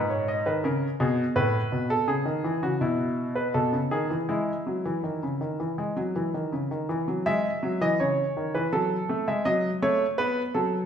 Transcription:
0.00 0.45 G#2 medium
0.10 0.28 C#5 medium
0.28 0.46 D#5 medium
0.46 0.64 D#3 medium
0.46 0.64 B4 medium
0.64 0.87 C#3 medium
0.64 0.87 A#4 medium
1.00 1.23 B2 loud
1.00 1.23 G#4 medium
1.36 1.59 A2 medium
1.36 1.89 B4 loud
1.72 1.95 B2 medium
1.90 2.08 A4 loud
2.08 2.26 C#3 medium
2.08 2.61 G#4 medium
2.25 2.44 D#3 medium
2.44 2.63 E3 medium
2.63 2.81 C#3 medium
2.63 2.81 F#4 medium
2.81 3.52 B2 medium
2.81 3.35 E4 medium
3.35 3.54 B4 medium
3.54 3.73 B2 medium
3.54 3.77 A4 medium
3.73 3.91 C#3 medium
3.91 4.10 D#3 medium
3.91 4.15 G#4 medium
4.10 4.29 E3 medium
4.29 4.52 G#3 medium
4.29 6.85 E4 medium
4.67 4.85 F#3 medium
4.85 5.03 E3 medium
5.04 5.22 D#3 medium
5.23 5.41 C#3 medium
5.41 5.59 D#3 medium
5.60 5.78 E3 medium
5.78 5.96 G#3 medium
5.96 6.15 F#3 medium
6.16 6.34 E3 medium
6.34 6.52 D#3 medium
6.52 6.70 C#3 medium
6.71 6.89 D#3 medium
6.89 7.07 E3 medium
7.08 7.26 F#3 medium
7.26 7.49 G#3 medium
7.26 7.80 E5 loud
7.63 7.81 F#3 medium
7.81 7.99 E3 medium
7.81 7.99 D#5 loud
8.00 8.23 C#3 medium
8.00 8.53 C#5 medium
8.37 8.54 D#3 medium
8.55 8.73 E3 medium
8.55 8.72 B4 medium
8.73 8.95 F#3 medium
8.73 9.26 A4 loud
9.09 9.27 A3 medium
9.28 9.46 G#3 medium
9.28 9.46 E5 medium
9.45 9.68 F#3 medium
9.45 9.68 D#5 loud
9.82 10.05 A3 medium
9.82 10.05 C#5 loud
10.18 10.41 B3 medium
10.18 10.41 B4 loud
10.55 10.86 F#3 medium
10.55 10.77 A4 medium

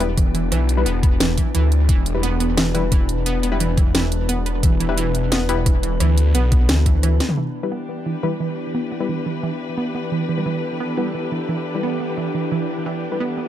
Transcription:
0.00 0.50 E1 loud
0.00 7.33 E3 medium
0.00 0.09 G3 loud
0.00 7.33 B3 medium
0.00 0.10 B3 medium
0.00 7.34 D4 medium
0.00 0.09 E4 medium
0.00 1.87 G4 medium
0.00 0.09 B4 loud
0.00 closed hi-hat medium
0.17 0.27 E3 medium
0.17 kick loud
0.17 cross-stick soft
0.17 closed hi-hat medium
0.35 0.45 E3 medium
0.35 closed hi-hat medium
0.52 0.85 B1 loud
0.52 0.67 E3 loud
0.52 cross-stick medium
0.52 closed hi-hat medium
0.69 closed hi-hat medium
0.77 0.83 G3 medium
0.77 0.83 E4 medium
0.77 0.83 B4 loud
0.86 1.36 E1 loud
0.86 1.01 B3 loud
0.86 closed hi-hat medium
1.03 1.13 B3 medium
1.03 kick loud
1.03 closed hi-hat medium
1.20 1.30 E3 medium
1.20 snare loud
1.20 closed hi-hat medium
1.37 1.47 E3 medium
1.37 kick medium
1.37 closed hi-hat medium
1.55 1.88 D2 medium
1.55 1.70 E3 loud
1.55 closed hi-hat medium
1.72 closed hi-hat medium
1.89 3.25 E1 loud
1.89 2.04 E3 loud
1.89 7.35 B4 medium
1.89 kick loud
1.89 closed hi-hat medium
2.06 closed hi-hat medium
2.15 2.23 G3 medium
2.15 2.23 E4 medium
2.15 2.23 B4 loud
2.23 2.38 B3 loud
2.23 closed hi-hat medium
2.40 2.50 B3 medium
2.40 closed hi-hat medium
2.57 2.67 E3 medium
2.57 snare loud
2.57 closed hi-hat medium
2.75 2.85 E3 medium
2.75 2.83 G3 loud
2.75 2.83 E4 medium
2.75 2.83 B4 loud
2.75 closed hi-hat medium
2.92 3.07 E3 loud
2.92 kick loud
2.92 cross-stick soft
2.92 closed hi-hat medium
3.09 closed hi-hat medium
3.26 4.62 E1 loud
3.26 3.41 B3 loud
3.26 closed hi-hat loud
3.43 3.53 B3 medium
3.43 closed hi-hat medium
3.52 3.57 G3 medium
3.52 3.57 E4 medium
3.52 3.57 B4 loud
3.60 3.70 E3 medium
3.60 closed hi-hat medium
3.77 3.87 E3 medium
3.77 kick loud
3.77 cross-stick soft
3.77 closed hi-hat medium
3.95 4.10 E3 loud
3.95 snare loud
3.95 closed hi-hat medium
4.12 closed hi-hat medium
4.29 4.44 B3 loud
4.29 closed hi-hat medium
4.46 4.56 B3 medium
4.46 closed hi-hat medium
4.63 5.99 E1 loud
4.63 4.73 E3 medium
4.63 kick loud
4.63 closed hi-hat loud
4.80 4.90 E3 medium
4.80 closed hi-hat medium
4.89 4.98 G3 medium
4.89 4.98 E4 medium
4.89 4.98 B4 loud
4.97 5.12 E3 loud
4.97 closed hi-hat medium
5.15 closed hi-hat medium
5.32 5.47 B3 loud
5.32 snare loud
5.32 closed hi-hat medium
5.49 5.58 G3 loud
5.49 5.59 B3 medium
5.49 5.58 E4 medium
5.49 5.58 B4 loud
5.49 closed hi-hat medium
5.66 5.76 E3 medium
5.66 kick loud
5.66 cross-stick soft
5.66 closed hi-hat loud
5.83 5.93 E3 medium
5.83 closed hi-hat medium
6.00 6.33 D2 loud
6.00 6.15 E3 loud
6.00 cross-stick medium
6.00 closed hi-hat loud
6.18 closed hi-hat medium
6.35 6.68 B1 loud
6.35 6.50 B3 loud
6.35 closed hi-hat loud
6.52 6.62 B3 medium
6.52 kick loud
6.52 closed hi-hat medium
6.69 7.19 D2 loud
6.69 6.79 E3 medium
6.69 snare loud
6.69 closed hi-hat medium
6.86 6.96 E3 medium
6.86 kick medium
6.86 closed hi-hat medium
7.03 7.18 E3 loud
7.03 cross-stick medium
7.03 closed hi-hat medium
7.20 snare medium
7.20 closed hi-hat medium
7.29 mid tom medium
7.38 7.52 E3 loud
7.38 13.48 E3 medium
7.38 13.48 B3 medium
7.38 13.48 E4 medium
7.38 10.11 G4 medium
7.56 13.48 D4 medium
7.63 7.72 G3 medium
7.63 7.72 E4 medium
7.63 7.72 B4 loud
7.71 7.87 B3 loud
7.71 13.48 G4 medium
7.89 7.99 B3 medium
8.05 8.16 E3 medium
8.05 13.48 B4 medium
8.23 8.33 E3 medium
8.23 8.32 G3 loud
8.23 8.32 E4 medium
8.23 8.32 B4 loud
8.40 8.55 E3 loud
8.75 8.90 B3 loud
8.92 9.02 B3 medium
9.00 9.06 G3 medium
9.00 9.06 E4 medium
9.00 9.06 B4 loud
9.09 9.19 E3 medium
9.26 9.36 E3 medium
9.43 9.58 E3 loud
9.78 9.92 B3 medium
9.95 10.05 B3 medium
10.12 10.22 E3 medium
10.12 12.85 A4 medium
10.29 10.39 E3 medium
10.37 10.46 G3 medium
10.37 10.46 E4 medium
10.37 10.46 B4 loud
10.46 10.61 E3 loud
10.80 10.95 B3 loud
10.97 11.06 G3 loud
10.97 11.07 B3 medium
10.97 11.06 E4 medium
10.97 11.06 B4 loud
11.15 11.25 E3 medium
11.32 11.42 E3 medium
11.49 11.64 E3 medium
11.75 11.80 G3 medium
11.75 11.80 E4 medium
11.75 11.80 B4 medium
11.83 11.98 B3 loud
12.00 12.10 B3 medium
12.18 12.27 E3 medium
12.35 12.45 E3 medium
12.52 12.67 E3 loud
12.86 13.01 E3 loud
12.86 13.48 G4 medium
13.12 13.20 G3 medium
13.12 13.20 E4 medium
13.12 13.20 B4 loud
13.20 13.35 B3 loud
13.38 13.47 B3 medium

